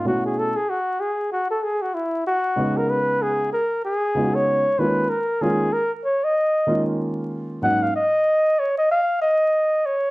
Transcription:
X:1
M:4/4
L:1/16
Q:"Swing 16ths" 1/4=95
K:Ebm
V:1 name="Flugelhorn"
^F A =A _A F2 A2 F =A _A F =E2 F2- | ^F B c2 A2 B2 A3 d3 c2 | B2 A2 B z d e4 z4 z | g f e4 d e f2 e4 d2 |]
V:2 name="Grand piano"
[=B,,=A,^C=E^F]2 z12 z2 | [D,A,CEG]6 z4 [D,A,CEFG]2 z2 [E,A,B,DF]2 | z2 [E,A,B,DF]2 z6 [E,A,B,DF]6 | [A,,G,B,DE]2 z12 z2 |]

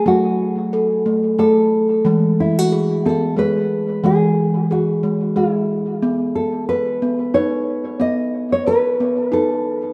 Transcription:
X:1
M:3/4
L:1/16
Q:"Swing 16ths" 1/4=91
K:E
V:1 name="Nylon-string guitar"
F8 A3 z | z2 E F3 A2 B4 | G4 F4 E3 z | z2 A2 B4 c4 |
d3 c B4 A3 z |]
V:2 name="Steel tongue drum"
A,4 A2 A,2 A4 | G,4 G2 B,2 G4 | G,4 G2 G,2 G4 | z4 B2 B,2 B4 |
z4 B2 B,2 B4 |]
V:3 name="Steel tongue drum" clef=bass
F,8 A,4 | E,8 G,4 | E,8 G,4 | B,8 D4 |
B,8 D4 |]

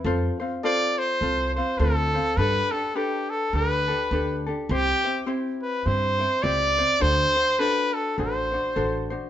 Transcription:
X:1
M:4/4
L:1/8
Q:"Swing" 1/4=103
K:C
V:1 name="Trumpet"
z2 d c2 c A2 | B A G A B3 z | G2 z B c2 d2 | c2 B A c3 z |]
V:2 name="Ukulele"
[CFAc] [CFc] [CFAc]2 [CFAc] [CFc] [CFAc] [CFc] | [DGAB] [DGA] [DGAB]2 [DGAB] [DGA] [DGAB] [DGA] | [CEGc] [CEc] [CEGc]2 [CEGc] [CEc] [CEGc] [CEc] | [D^FAc] [DFc] [DFAc]2 [DFAc] [DFc] [DFAc] [DFc] |]
V:3 name="Upright bass" clef=bass
F,, z3 C,,2 D,,2 | G,, z3 D,,2 D,,2 | C,, z3 G,,2 _D,,2 | D,, z3 A,,,2 A,,,2 |]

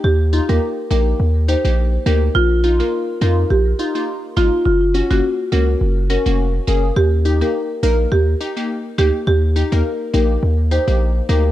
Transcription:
X:1
M:4/4
L:1/16
Q:"Swing 16ths" 1/4=104
K:Eb
V:1 name="Marimba"
G z2 B z2 B z3 c z3 B z | F z2 B z2 B z G3 z3 F z | F z2 _G z2 B z3 B z3 B z | G z2 B z2 B z G3 z3 G z |
G z2 B z2 B z3 c z3 B z |]
V:2 name="Synth pluck"
z2 [EF] [B,EG] z2 [B,EG] z3 [EG] [B,EG] z2 [B,EG] z | z2 [EF] [B,EF] z2 [B,EF] z3 [EF] [B,EF] z2 [B,EF] z | z2 [_D_G] [B,DG] z2 [B,DG] z3 [DG] [B,DG] z2 [B,DA] z | z2 [EG] [B,EG] z2 [B,EB] z3 [EG] [B,EG] z2 [B,EG] z |
z2 [EG] [B,EB] z2 [B,EG] z3 [EG] [B,EG] z2 [B,EG] z |]
V:3 name="808-style bass" clef=bass
E,,3 E,, z2 B,,,2 E,,3 B,,,3 D,,2 | B,,,4 z2 F,,2 B,,,2 z4 A,,, z | _G,,,3 G,,, z2 _D,,2 G,,,3 F,,,3 G,,,2 | E,,4 z2 B,,,2 E,,2 z4 D,, z |
E,,3 E,, z2 B,,,2 E,,3 B,,,3 D,,2 |]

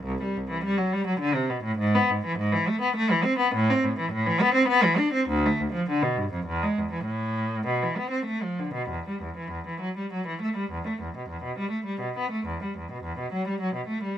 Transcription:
X:1
M:3/4
L:1/16
Q:1/4=102
K:Clyd
V:1 name="Cello" clef=bass
C,, G, C,, E, G, F, G, F, D, C, B,, A,, | [K:Ephr] ^G,, B, G,, E, G,, E, A, B, A, E, C B, | A,, C A,, E, A,, E, B, C B, E, D C | D,, A, D,, F, D, B,, G,, F,, E,, ^G, E,, E, |
A,,4 B,, E, B, C A, F, D, B,, | [K:Em] E,, G, E,, E, E,, E, F, G, F, E, A, G, | E,, A, E,, B,, E,, B,, G, A, G, B,, B, A, | E,, G, E,, B,, E,, B,, F, G, F, B,, A, G, |]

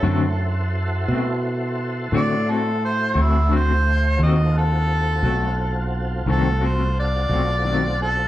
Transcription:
X:1
M:12/8
L:1/8
Q:3/8=58
K:D
V:1 name="Harmonica"
A2 z4 d A =c E c2 | ^d A4 z A ^B =d3 A |]
V:2 name="Tonewheel organ"
[EFA=c]12 | [^B,=F^FA]12 |]
V:3 name="Clean electric guitar"
[D,A,=CF] z2 [A,CF] z2 [D,A,CF] [A,CF] z [A,CF] [D,A,CF] z | [^D,A,^B,F] z2 [A,B,F] z2 [D,A,B,F] [A,B,F] z [A,B,F] [D,A,B,F] z |]
V:4 name="Fretless electric bass" clef=bass
F,,3 B,,3 A,,3 D,,3 | ^D,,3 B,,,3 ^B,,,3 =B,,,3 |]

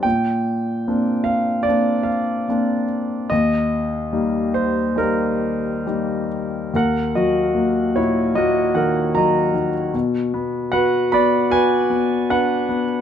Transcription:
X:1
M:4/4
L:1/16
Q:1/4=74
K:Eb
V:1 name="Grand piano"
g6 f2 d2 f4 z2 | e6 c2 B6 z2 | [K:Ebm] [Bg]2 [Ge]4 [_Fd]2 [Ge]2 [Bg]2 [eb]3 z | z4 [=B^f]2 [=d=b]2 [Ba]4 [Bf]3 z |]
V:2 name="Grand piano"
B,,4 [B,CD]4 [B,CD]4 [B,CD]4 | E,,4 [G,B,E]4 [G,B,E]4 [G,B,E]4 | [K:Ebm] E,,2 G,2 B,2 B,,2 B,2 E,2 G,2 E,2 | =B,,2 =B,2 ^F2 B,2 F2 B,2 =D2 B,2 |]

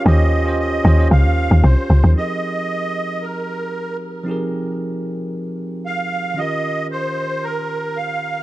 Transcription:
X:1
M:4/4
L:1/16
Q:1/4=114
K:Fm
V:1 name="Accordion"
e4 e4 f4 c4 | e8 B6 z2 | z12 f4 | e4 c4 B4 f4 |]
V:2 name="Tine electric piano"
[DFGc]2 z [DFGc]2 z [DFGc] [DFGc]6 z3 | [F,CEGAB]16 | [F,CEGAB]16 | [E,DFGB]16 |]
V:3 name="Log drum bass" clef=bass
E,,6 E,,2 D,, E,,2 E,, C,, z D,, E,, | z16 | z16 | z16 |]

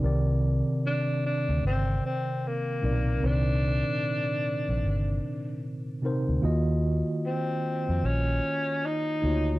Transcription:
X:1
M:4/4
L:1/16
Q:"Swing 16ths" 1/4=75
K:Eblyd
V:1 name="Tine electric piano"
[C,E,CBd]6 z8 [B,,CEBd]2 | [C,E,CBc]6 z8 [C,CEBc]2 | [E,B,F_Ge]6 z8 [B,EFG_d]2 |]
V:2 name="Tenor saxophone"
z4 D2 D2 C2 C2 B,4 | D12 z4 | z4 C4 _D4 E4 |]
V:3 name="Fingered electric bass" clef=bass
C,,3 z4 D,, G,,,2 z4 =B,,,2 | C,,3 z4 B,,, G,,,2 z4 z D,, | E,,3 z4 F,, B,,,2 z4 D,,2 |]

